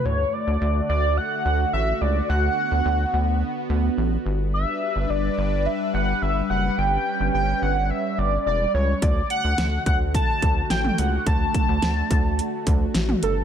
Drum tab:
HH |----------------|----------------|----------------|----------------|
SD |----------------|----------------|----------------|----------------|
T2 |----------------|----------------|----------------|----------------|
BD |----------------|----------------|----------------|----------------|

HH |x-x-x-x-x-x-x-x-|x-x-x-x-x-x-x-x-|
SD |----o-------o---|----o-------o---|
T2 |-------------o--|-------------o--|
BD |o-----o-o-o-----|o-o---o---o-----|